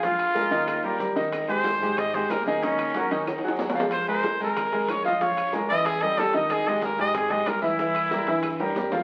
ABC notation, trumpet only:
X:1
M:4/4
L:1/8
Q:1/4=186
K:Ab
V:1 name="Trumpet"
F6 z2 | z c3 e c B A | D4 z4 | c c2 B3 d e |
d2 z e A e =A e | A e B e A e B =E- | =E4- E z3 |]